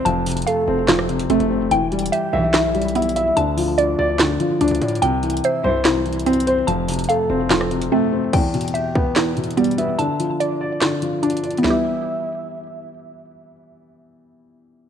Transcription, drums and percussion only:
0.06 closed hi-hat medium
0.26 closed hi-hat medium
0.26 open hi-hat medium
0.32 closed hi-hat medium
0.37 closed hi-hat medium
0.42 closed hi-hat medium
0.47 closed hi-hat medium
0.88 snare loud
0.88 clap loud
0.88 closed hi-hat medium
0.99 cross-stick medium
1.09 closed hi-hat medium
1.19 closed hi-hat medium
1.30 closed hi-hat medium
1.40 closed hi-hat soft
1.71 closed hi-hat medium
1.92 closed hi-hat medium
1.99 closed hi-hat medium
2.06 closed hi-hat medium
2.13 closed hi-hat medium
2.54 snare loud
2.54 clap loud
2.54 closed hi-hat medium
2.75 closed hi-hat soft
2.82 closed hi-hat soft
2.88 closed hi-hat soft
2.95 closed hi-hat medium
3.02 closed hi-hat medium
3.09 closed hi-hat medium
3.16 closed hi-hat medium
3.37 closed hi-hat medium
3.58 open hi-hat medium
3.78 closed hi-hat medium
4.19 snare loud
4.19 clap loud
4.19 closed hi-hat medium
4.40 closed hi-hat medium
4.61 closed hi-hat medium
4.68 closed hi-hat medium
4.75 closed hi-hat medium
4.82 closed hi-hat medium
4.88 closed hi-hat soft
4.95 closed hi-hat soft
5.02 closed hi-hat medium
5.23 closed hi-hat medium
5.30 closed hi-hat medium
5.37 closed hi-hat medium
5.44 closed hi-hat medium
5.85 snare loud
5.85 clap loud
5.85 closed hi-hat medium
6.06 closed hi-hat soft
6.13 closed hi-hat soft
6.19 closed hi-hat medium
6.26 closed hi-hat medium
6.33 closed hi-hat medium
6.40 closed hi-hat medium
6.47 closed hi-hat medium
6.68 closed hi-hat medium
6.88 closed hi-hat medium
6.88 open hi-hat medium
6.94 closed hi-hat medium
6.99 closed hi-hat medium
7.04 closed hi-hat medium
7.09 closed hi-hat medium
7.50 snare loud
7.50 clap loud
7.50 closed hi-hat medium
7.61 cross-stick medium
7.71 closed hi-hat medium
7.82 closed hi-hat medium
8.33 kick loud
8.33 closed hi-hat medium
8.33 crash medium
8.54 closed hi-hat medium
8.61 closed hi-hat medium
8.68 closed hi-hat medium
8.75 closed hi-hat medium
8.95 kick loud
9.16 snare loud
9.16 clap loud
9.16 closed hi-hat medium
9.37 closed hi-hat soft
9.44 closed hi-hat soft
9.51 closed hi-hat soft
9.57 closed hi-hat medium
9.64 closed hi-hat medium
9.71 closed hi-hat medium
9.78 closed hi-hat medium
9.99 closed hi-hat medium
10.20 closed hi-hat medium
10.41 closed hi-hat medium
10.81 snare loud
10.81 clap loud
10.81 closed hi-hat medium
11.02 closed hi-hat medium
11.23 closed hi-hat medium
11.30 closed hi-hat medium
11.37 closed hi-hat medium
11.44 closed hi-hat medium
11.51 closed hi-hat soft
11.57 closed hi-hat soft
11.64 snare loud
11.64 floor tom loud

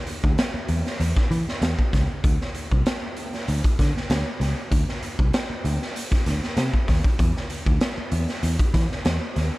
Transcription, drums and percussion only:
0.07 closed hi-hat medium
0.24 kick loud
0.38 snare loud
0.38 closed hi-hat medium
0.68 closed hi-hat loud
0.86 snare soft
0.86 closed hi-hat soft
1.00 closed hi-hat medium
1.16 kick loud
1.16 snare soft
1.31 closed hi-hat medium
1.49 snare soft
1.62 snare loud
1.62 closed hi-hat medium
1.79 kick loud
1.93 kick medium
1.93 snare soft
1.93 closed hi-hat medium
2.24 kick loud
2.24 closed hi-hat medium
2.41 snare soft
2.54 closed hi-hat medium
2.71 kick loud
2.86 snare loud
2.86 closed hi-hat medium
3.17 closed hi-hat medium
3.33 snare soft
3.33 closed hi-hat soft
3.48 closed hi-hat medium
3.64 kick loud
3.64 closed hi-hat medium
3.79 kick loud
3.79 snare soft
3.79 closed hi-hat medium
3.97 snare soft
4.10 snare loud
4.10 closed hi-hat loud
4.41 snare soft
4.41 closed hi-hat medium
4.72 kick loud
4.72 closed hi-hat medium
4.89 snare soft
5.03 closed hi-hat medium
5.19 kick loud
5.33 snare loud
5.33 closed hi-hat medium
5.65 closed hi-hat medium
5.82 snare soft
5.96 closed hi-hat medium
6.12 kick loud
6.12 snare soft
6.12 closed hi-hat medium
6.26 snare soft
6.26 closed hi-hat medium
6.44 snare soft
6.57 snare loud
6.57 closed hi-hat medium
6.74 kick medium
6.88 kick medium
6.88 snare soft
6.88 open hi-hat medium
7.04 kick loud
7.19 kick loud
7.19 closed hi-hat medium
7.37 snare soft
7.50 closed hi-hat medium
7.66 kick loud
7.81 snare loud
7.81 closed hi-hat medium
8.12 closed hi-hat loud
8.28 snare soft
8.28 closed hi-hat soft
8.43 closed hi-hat medium
8.59 kick loud
8.59 closed hi-hat medium
8.74 kick loud
8.74 snare soft
8.74 closed hi-hat medium
8.92 snare soft
9.05 snare loud
9.05 closed hi-hat medium
9.36 snare soft
9.36 closed hi-hat medium

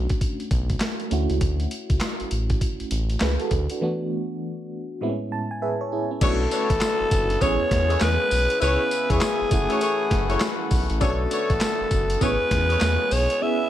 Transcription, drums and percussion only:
0.10 kick medium
0.10 closed hi-hat medium
0.21 kick medium
0.21 closed hi-hat medium
0.40 closed hi-hat soft
0.51 kick loud
0.51 closed hi-hat medium
0.70 kick medium
0.70 closed hi-hat medium
0.80 snare loud
0.80 clap medium
0.80 closed hi-hat medium
1.00 closed hi-hat soft
1.11 closed hi-hat medium
1.30 closed hi-hat medium
1.41 kick loud
1.41 closed hi-hat medium
1.60 closed hi-hat soft
1.71 closed hi-hat medium
1.90 kick loud
1.90 closed hi-hat medium
2.00 snare loud
2.00 clap medium
2.00 closed hi-hat medium
2.20 closed hi-hat soft
2.31 closed hi-hat medium
2.50 kick medium
2.50 closed hi-hat medium
2.61 kick loud
2.61 closed hi-hat medium
2.80 closed hi-hat soft
2.91 closed hi-hat medium
3.10 closed hi-hat medium
3.20 snare loud
3.20 clap medium
3.20 closed hi-hat medium
3.40 closed hi-hat soft
3.51 kick medium
3.51 closed hi-hat medium
3.70 closed hi-hat medium
6.21 kick loud
6.21 closed hi-hat medium
6.21 crash loud
6.21 tambourine medium
6.51 closed hi-hat medium
6.51 tambourine medium
6.70 kick loud
6.70 closed hi-hat medium
6.81 snare loud
6.81 clap medium
6.81 closed hi-hat medium
6.81 tambourine loud
7.11 kick loud
7.11 closed hi-hat medium
7.11 tambourine medium
7.30 closed hi-hat medium
7.41 kick medium
7.41 closed hi-hat medium
7.41 tambourine medium
7.71 kick loud
7.71 snare medium
7.71 closed hi-hat medium
7.90 closed hi-hat medium
8.00 snare loud
8.00 clap medium
8.00 closed hi-hat medium
8.00 tambourine medium
8.31 open hi-hat medium
8.31 tambourine medium
8.50 closed hi-hat medium
8.61 closed hi-hat medium
8.61 tambourine medium
8.91 closed hi-hat medium
8.91 tambourine medium
9.10 kick loud
9.10 closed hi-hat medium
9.21 snare loud
9.21 clap medium
9.21 closed hi-hat medium
9.21 tambourine loud
9.51 kick loud
9.51 closed hi-hat medium
9.51 tambourine medium
9.70 closed hi-hat medium
9.81 closed hi-hat medium
9.81 tambourine medium
10.11 kick loud
10.11 snare medium
10.11 closed hi-hat medium
10.30 closed hi-hat medium
10.40 snare loud
10.40 clap medium
10.40 closed hi-hat medium
10.40 tambourine medium
10.71 kick loud
10.71 open hi-hat medium
10.71 tambourine medium
10.90 closed hi-hat medium
11.01 kick loud
11.01 closed hi-hat medium
11.01 tambourine medium
11.31 closed hi-hat medium
11.31 tambourine medium
11.50 kick loud
11.50 closed hi-hat medium
11.60 snare loud
11.60 clap medium
11.60 closed hi-hat medium
11.60 tambourine loud
11.91 kick medium
11.91 closed hi-hat medium
11.91 tambourine medium
12.10 closed hi-hat medium
12.21 kick loud
12.21 closed hi-hat medium
12.21 tambourine medium
12.51 kick loud
12.51 snare medium
12.51 closed hi-hat medium
12.70 closed hi-hat medium
12.80 snare loud
12.80 clap medium
12.80 closed hi-hat medium
12.80 tambourine medium
13.11 open hi-hat medium
13.11 tambourine medium
13.30 closed hi-hat medium

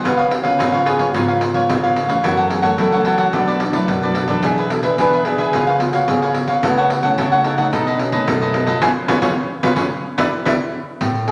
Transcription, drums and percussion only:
0.05 pandeiro medium
0.19 pandeiro soft
0.31 pandeiro medium
0.45 pandeiro medium
0.60 pandeiro medium
0.73 pandeiro soft
0.86 pandeiro medium
0.99 pandeiro medium
1.14 pandeiro medium
1.29 pandeiro soft
1.41 pandeiro medium
1.54 pandeiro medium
1.69 pandeiro medium
1.84 pandeiro soft
1.96 pandeiro medium
2.09 pandeiro medium
2.24 pandeiro medium
2.38 pandeiro soft
2.50 pandeiro medium
2.63 pandeiro medium
2.78 pandeiro medium
2.92 pandeiro soft
3.05 pandeiro medium
3.18 pandeiro medium
3.33 pandeiro medium
3.48 pandeiro soft
3.60 pandeiro medium
3.73 pandeiro medium
3.88 pandeiro medium
4.03 pandeiro soft
4.15 pandeiro medium
4.28 pandeiro medium
4.43 pandeiro medium
4.58 pandeiro soft
4.70 pandeiro medium
4.83 pandeiro medium
4.98 pandeiro medium
5.12 pandeiro soft
5.25 pandeiro medium
5.38 pandeiro medium
5.53 pandeiro medium
5.67 pandeiro soft
5.80 pandeiro medium
5.93 pandeiro medium
6.08 pandeiro medium
6.22 pandeiro soft
6.34 pandeiro medium
6.48 pandeiro medium
6.63 pandeiro medium
6.77 pandeiro soft
6.90 pandeiro medium
7.03 pandeiro medium
7.18 pandeiro medium
7.32 pandeiro soft
7.44 pandeiro medium
7.58 pandeiro medium
7.73 pandeiro medium
7.87 pandeiro soft
7.99 pandeiro medium
8.12 pandeiro medium
8.28 pandeiro medium
8.42 pandeiro soft
8.54 pandeiro medium
8.67 pandeiro medium
8.82 pandeiro loud
9.08 pandeiro loud
9.22 pandeiro loud
9.63 pandeiro medium
9.76 pandeiro medium
10.18 pandeiro loud
10.46 pandeiro loud
11.01 pandeiro medium
11.15 pandeiro soft
11.28 pandeiro medium

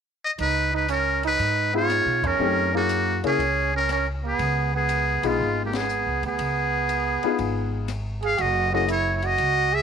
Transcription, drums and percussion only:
0.38 ride medium
0.88 hi-hat pedal soft
0.88 ride medium
1.23 ride soft
1.39 ride medium
1.90 cross-stick medium
1.90 hi-hat pedal medium
1.90 ride medium
2.24 kick medium
2.24 ride medium
2.89 hi-hat pedal medium
2.89 ride medium
3.24 ride soft
3.40 ride medium
3.89 cross-stick medium
3.89 hi-hat pedal soft
3.89 ride medium
4.39 ride medium
4.89 hi-hat pedal soft
4.89 ride medium
5.23 ride medium
5.73 snare medium
5.73 ride medium
5.89 hi-hat pedal medium
6.23 ride soft
6.39 ride medium
6.89 hi-hat pedal medium
6.89 ride medium
7.23 ride soft
7.39 ride medium
7.88 cross-stick medium
7.88 hi-hat pedal medium
7.88 ride medium
8.23 ride soft
8.38 ride medium
8.88 hi-hat pedal medium
8.88 ride medium
9.22 ride soft
9.38 ride medium

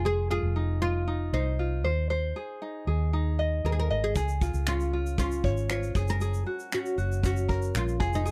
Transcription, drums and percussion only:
4.16 kick medium
4.16 shaker medium
4.28 shaker soft
4.41 kick medium
4.41 shaker soft
4.54 shaker soft
4.67 finger snap loud
4.67 shaker medium
4.80 shaker soft
5.06 shaker soft
5.18 kick medium
5.18 shaker medium
5.31 shaker soft
5.44 kick medium
5.57 shaker soft
5.70 finger snap medium
5.70 shaker medium
5.83 shaker soft
5.95 finger snap soft
5.95 kick medium
5.95 shaker soft
6.08 shaker soft
6.21 shaker medium
6.34 shaker soft
6.59 shaker soft
6.72 finger snap loud
6.72 shaker medium
6.86 shaker soft
6.98 shaker soft
7.12 shaker soft
7.24 kick medium
7.24 shaker medium
7.36 shaker medium
7.49 kick medium
7.62 shaker soft
7.75 finger snap loud
7.75 shaker medium
7.88 shaker soft
8.00 kick medium
8.13 shaker soft
8.26 shaker medium

